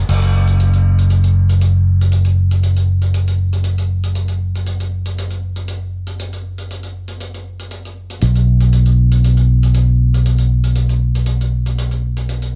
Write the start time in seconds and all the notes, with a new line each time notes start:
0.09 F#1, closed hi-hat, crash
0.22 closed hi-hat
0.47 closed hi-hat
0.60 closed hi-hat
0.73 closed hi-hat
0.98 closed hi-hat
1.10 closed hi-hat
1.24 closed hi-hat
1.49 closed hi-hat
1.61 closed hi-hat
2.01 closed hi-hat
2.12 closed hi-hat
2.25 closed hi-hat
2.51 closed hi-hat
2.63 closed hi-hat
2.76 closed hi-hat
3.01 closed hi-hat
3.14 closed hi-hat
3.28 closed hi-hat
3.53 closed hi-hat
3.64 closed hi-hat
3.78 closed hi-hat
4.03 closed hi-hat
4.15 closed hi-hat
4.28 closed hi-hat
4.55 closed hi-hat
4.66 closed hi-hat
4.80 closed hi-hat
5.05 closed hi-hat
5.18 closed hi-hat
5.30 closed hi-hat
5.56 closed hi-hat
5.68 closed hi-hat
6.07 closed hi-hat
6.19 closed hi-hat
6.33 closed hi-hat
6.58 closed hi-hat
6.71 closed hi-hat
6.83 closed hi-hat
7.08 closed hi-hat
7.20 closed hi-hat
7.34 closed hi-hat
7.59 closed hi-hat
7.71 closed hi-hat
7.85 closed hi-hat
8.10 closed hi-hat
8.21 B1, closed hi-hat
8.35 closed hi-hat
8.60 closed hi-hat
8.73 closed hi-hat
8.86 closed hi-hat
9.11 closed hi-hat
9.24 closed hi-hat
9.37 closed hi-hat
9.63 closed hi-hat
9.74 closed hi-hat
10.14 closed hi-hat
10.26 closed hi-hat
10.38 closed hi-hat
10.64 closed hi-hat
10.75 closed hi-hat
10.89 closed hi-hat
11.15 closed hi-hat
11.26 closed hi-hat
11.41 closed hi-hat
11.66 closed hi-hat
11.78 closed hi-hat
11.91 closed hi-hat
12.17 closed hi-hat
12.29 closed hi-hat
12.42 closed hi-hat